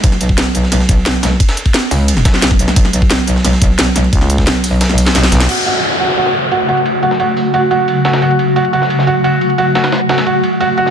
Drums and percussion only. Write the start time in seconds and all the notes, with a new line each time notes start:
0.04 kick, closed hi-hat, ride, ride bell
0.12 snare, ride
0.21 closed hi-hat, ride
0.29 kick
0.38 snare, closed hi-hat, ride, ride bell
0.46 ride
0.55 closed hi-hat, ride
0.63 snare
0.72 snare, closed hi-hat, ride, ride bell
0.80 snare
0.89 kick, closed hi-hat, ride
1.06 snare, closed hi-hat, ride, ride bell
1.23 snare, closed hi-hat, ride
1.40 kick, closed hi-hat, ride, ride bell
1.49 snare, ride
1.57 closed hi-hat
1.66 kick, ride
1.74 snare, closed hi-hat, ride, ride bell
1.91 closed hi-hat, open hi-hat
2.08 closed hi-hat, ride, ride bell
2.17 snare
2.25 kick, snare, closed hi-hat, ride
2.34 snare
2.42 snare, closed hi-hat, ride, ride bell
2.51 kick, snare
2.59 closed hi-hat, ride
2.68 snare
2.76 kick, closed hi-hat, ride, ride bell
2.85 snare, ride
2.93 closed hi-hat, ride
3.02 kick
3.10 snare, closed hi-hat, ride, ride bell
3.19 ride
3.27 closed hi-hat, ride
3.36 snare
3.45 snare, closed hi-hat, ride, ride bell
3.53 snare
3.62 kick, closed hi-hat, ride
3.79 snare, closed hi-hat, ride, ride bell
3.96 snare, closed hi-hat, ride
4.04 ride
4.13 kick, closed hi-hat, ride, ride bell
4.21 snare
4.30 closed hi-hat, ride
4.38 kick, snare
4.47 snare, closed hi-hat, ride, ride bell
4.64 closed hi-hat, open hi-hat
4.81 snare, closed hi-hat, ride, ride bell
4.89 snare
4.98 closed hi-hat, open hi-hat
5.06 snare, ride
5.15 snare, closed hi-hat, ride bell
5.23 snare, open hi-hat
5.32 snare, closed hi-hat, ride
5.40 snare, ride
5.49 crash, ride
5.58 ride
5.66 ride
5.83 ride
5.92 ride
6.00 ride
6.09 snare
6.17 ride
6.26 snare
6.34 ride
6.52 ride
6.69 ride
6.77 ride
6.86 ride
7.03 ride
7.11 snare
7.20 ride
7.37 open hi-hat
7.54 ride
7.71 ride
7.88 ride
8.05 snare, ride
8.13 snare, ride
8.22 ride
8.31 ride
8.39 ride
8.56 ride
8.65 ride
8.73 ride
8.82 snare
8.90 ride
8.99 snare
9.07 ride
9.24 ride
9.41 ride
9.50 ride
9.58 ride
9.75 snare, ride
9.84 snare, ride
9.92 snare, ride
10.09 snare, ride
10.18 snare, ride
10.26 ride
10.43 ride
10.60 ride
10.78 ride
10.86 snare